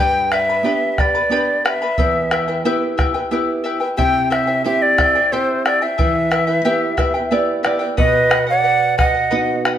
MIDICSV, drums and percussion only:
0, 0, Header, 1, 2, 480
1, 0, Start_track
1, 0, Key_signature, 1, "minor"
1, 0, Tempo, 666667
1, 1428, Time_signature, 3, 2, 24, 8
1, 7044, End_track
2, 0, Start_track
2, 0, Title_t, "Bombo"
2, 228, Note_on_c, 9, 37, 69
2, 300, Note_off_c, 9, 37, 0
2, 708, Note_on_c, 9, 37, 51
2, 708, Note_on_c, 9, 43, 60
2, 780, Note_off_c, 9, 37, 0
2, 780, Note_off_c, 9, 43, 0
2, 1193, Note_on_c, 9, 37, 77
2, 1265, Note_off_c, 9, 37, 0
2, 1425, Note_on_c, 9, 43, 70
2, 1497, Note_off_c, 9, 43, 0
2, 1666, Note_on_c, 9, 37, 77
2, 1738, Note_off_c, 9, 37, 0
2, 2151, Note_on_c, 9, 37, 56
2, 2151, Note_on_c, 9, 43, 66
2, 2223, Note_off_c, 9, 37, 0
2, 2223, Note_off_c, 9, 43, 0
2, 2870, Note_on_c, 9, 43, 54
2, 2942, Note_off_c, 9, 43, 0
2, 3113, Note_on_c, 9, 37, 62
2, 3185, Note_off_c, 9, 37, 0
2, 3589, Note_on_c, 9, 37, 68
2, 3589, Note_on_c, 9, 43, 54
2, 3661, Note_off_c, 9, 37, 0
2, 3661, Note_off_c, 9, 43, 0
2, 4073, Note_on_c, 9, 37, 80
2, 4145, Note_off_c, 9, 37, 0
2, 4312, Note_on_c, 9, 37, 20
2, 4312, Note_on_c, 9, 43, 65
2, 4384, Note_off_c, 9, 37, 0
2, 4384, Note_off_c, 9, 43, 0
2, 4431, Note_on_c, 9, 37, 22
2, 4503, Note_off_c, 9, 37, 0
2, 4548, Note_on_c, 9, 37, 73
2, 4620, Note_off_c, 9, 37, 0
2, 5024, Note_on_c, 9, 37, 56
2, 5024, Note_on_c, 9, 43, 53
2, 5096, Note_off_c, 9, 37, 0
2, 5096, Note_off_c, 9, 43, 0
2, 5505, Note_on_c, 9, 37, 72
2, 5577, Note_off_c, 9, 37, 0
2, 5627, Note_on_c, 9, 37, 19
2, 5699, Note_off_c, 9, 37, 0
2, 5746, Note_on_c, 9, 37, 22
2, 5746, Note_on_c, 9, 43, 67
2, 5818, Note_off_c, 9, 37, 0
2, 5818, Note_off_c, 9, 43, 0
2, 5865, Note_on_c, 9, 37, 23
2, 5937, Note_off_c, 9, 37, 0
2, 5984, Note_on_c, 9, 37, 84
2, 6056, Note_off_c, 9, 37, 0
2, 6111, Note_on_c, 9, 37, 23
2, 6183, Note_off_c, 9, 37, 0
2, 6472, Note_on_c, 9, 37, 65
2, 6472, Note_on_c, 9, 43, 66
2, 6544, Note_off_c, 9, 37, 0
2, 6544, Note_off_c, 9, 43, 0
2, 6950, Note_on_c, 9, 37, 71
2, 7022, Note_off_c, 9, 37, 0
2, 7044, End_track
0, 0, End_of_file